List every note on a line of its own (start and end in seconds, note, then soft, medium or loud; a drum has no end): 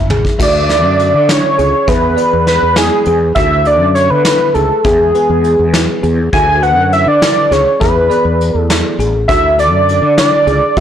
0.00 0.10 E1 medium
0.10 0.23 A1 medium
0.10 0.28 G#4 medium
0.10 floor tom medium
0.25 kick medium
0.38 0.84 D2 loud
0.38 0.65 D3 medium
0.38 0.65 D4 medium
0.38 0.74 F#4 medium
0.38 0.65 A4 medium
0.38 1.32 D5 medium
0.38 0.65 E5 medium
0.38 kick medium
0.38 crash medium
0.69 1.72 D3 medium
0.69 1.72 D4 medium
0.69 1.72 A4 medium
0.69 1.72 E5 medium
0.69 snare soft
0.69 closed hi-hat medium
0.84 1.11 F#2 medium
0.99 closed hi-hat medium
1.14 1.40 D3 medium
1.29 1.46 E4 medium
1.29 1.90 C#5 medium
1.29 snare medium
1.29 closed hi-hat medium
1.58 1.72 C#2 medium
1.58 1.76 G#4 medium
1.58 closed hi-hat medium
1.88 2.14 E2 medium
1.88 2.14 E3 medium
1.88 2.14 B3 medium
1.88 2.22 G#4 loud
1.88 2.13 G#4 medium
1.88 2.48 B4 medium
1.88 2.14 E5 medium
1.88 kick medium
1.88 closed hi-hat medium
2.16 3.20 E3 medium
2.16 3.20 B3 medium
2.16 3.20 G#4 medium
2.16 3.20 D5 medium
2.16 closed hi-hat medium
2.33 2.59 E2 medium
2.47 2.75 B4 loud
2.47 snare soft
2.47 closed hi-hat medium
2.62 2.89 E2 medium
2.76 2.94 E4 medium
2.76 3.19 G#4 medium
2.76 snare loud
2.76 closed hi-hat medium
3.05 3.33 E2 medium
3.05 3.24 G#4 medium
3.05 closed hi-hat medium
3.35 3.81 D2 loud
3.35 3.62 D3 medium
3.35 3.62 D4 medium
3.35 3.71 F#4 medium
3.35 3.62 A4 medium
3.35 3.68 E5 loud
3.35 3.62 E5 medium
3.35 kick medium
3.35 closed hi-hat medium
3.65 4.68 D3 medium
3.65 4.69 D4 medium
3.65 4.69 A4 medium
3.65 3.94 D5 loud
3.65 4.69 E5 medium
3.65 closed hi-hat medium
3.81 4.08 F#2 medium
3.95 4.12 C#5 medium
3.95 closed hi-hat medium
4.10 4.37 D3 medium
4.10 4.56 B4 loud
4.25 4.43 E4 medium
4.25 snare loud
4.25 closed hi-hat medium
4.54 4.68 C#2 medium
4.54 4.73 G#4 medium
4.54 4.86 A4 medium
4.54 closed hi-hat medium
4.84 5.11 E2 medium
4.84 5.10 E3 medium
4.84 5.10 B3 medium
4.84 6.03 G#4 medium
4.84 5.10 G#4 medium
4.84 5.19 G#4 medium
4.84 5.10 E5 medium
4.84 kick medium
4.84 closed hi-hat medium
5.15 6.17 E3 medium
5.15 6.17 B3 medium
5.15 6.17 G#4 medium
5.15 6.17 B4 medium
5.15 closed hi-hat medium
5.29 5.56 E2 medium
5.44 closed hi-hat medium
5.59 5.85 E2 medium
5.74 5.91 E4 medium
5.74 snare loud
5.74 closed hi-hat medium
6.03 6.29 E2 medium
6.03 6.20 G#4 medium
6.03 closed hi-hat medium
6.33 6.77 D2 loud
6.33 6.59 D3 medium
6.33 6.59 D4 medium
6.33 6.68 F#4 medium
6.33 6.59 A4 medium
6.33 6.59 E5 medium
6.33 6.64 G#5 loud
6.33 kick medium
6.33 closed hi-hat medium
6.62 7.65 D3 medium
6.62 7.65 D4 medium
6.62 7.64 A4 medium
6.62 7.65 B4 medium
6.62 6.92 F#5 loud
6.62 closed hi-hat medium
6.77 7.03 F#2 medium
6.92 7.10 E5 medium
6.92 closed hi-hat medium
7.06 7.33 D3 medium
7.06 7.54 D5 loud
7.22 7.39 E4 medium
7.22 snare loud
7.22 closed hi-hat medium
7.51 7.64 C#2 medium
7.51 7.69 G#4 medium
7.51 7.80 C#5 medium
7.51 snare soft
7.51 closed hi-hat medium
7.80 8.07 E2 medium
7.80 8.06 E3 medium
7.80 8.06 B3 medium
7.80 8.06 G#4 medium
7.80 8.15 G#4 loud
7.80 8.59 B4 medium
7.80 8.06 E5 medium
7.80 kick loud
7.80 closed hi-hat medium
8.10 9.12 E3 medium
8.10 9.13 B3 medium
8.10 9.13 G#4 medium
8.10 9.12 D5 medium
8.10 closed hi-hat medium
8.25 8.51 E2 medium
8.41 closed hi-hat medium
8.55 8.81 E2 medium
8.59 8.95 A4 medium
8.70 8.87 E4 medium
8.70 snare loud
8.70 closed hi-hat medium
8.99 9.25 A1 medium
8.99 9.17 G#4 medium
8.99 closed hi-hat medium
9.28 9.72 D2 loud
9.28 9.54 D3 medium
9.28 9.54 D4 medium
9.28 9.64 F#4 medium
9.28 9.54 A4 medium
9.28 9.56 E5 loud
9.28 9.54 E5 medium
9.28 kick medium
9.28 closed hi-hat medium
9.58 10.61 D3 medium
9.58 10.61 D4 medium
9.58 10.61 A4 medium
9.58 10.61 D5 medium
9.58 10.14 D5 loud
9.58 closed hi-hat medium
9.72 9.99 F#2 medium
9.89 closed hi-hat medium
10.02 10.29 D3 medium
10.17 10.35 E4 medium
10.17 10.79 D5 loud
10.17 snare loud
10.17 closed hi-hat medium
10.47 10.60 C#2 medium
10.47 10.64 G#4 medium
10.47 closed hi-hat medium
10.77 10.80 D2 medium
10.77 10.80 F#4 medium
10.77 kick loud
10.77 closed hi-hat medium